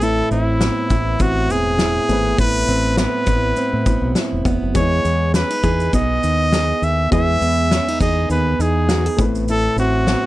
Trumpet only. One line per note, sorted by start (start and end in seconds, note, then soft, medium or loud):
0.03 0.32 A4 loud
0.32 1.23 E4 medium
1.22 1.53 F#4 loud
1.51 2.39 G#4 loud
2.40 2.95 B4 loud
2.99 4.12 B4 loud
4.77 5.31 C#5 loud
5.35 5.90 B4 medium
5.95 6.85 D#5 loud
6.84 7.12 E5 medium
7.13 7.97 E5 loud
8.02 8.29 D#5 medium
8.31 8.63 B4 medium
8.62 9.23 G#4 medium
9.51 9.77 A4 loud
9.80 10.26 F#4 medium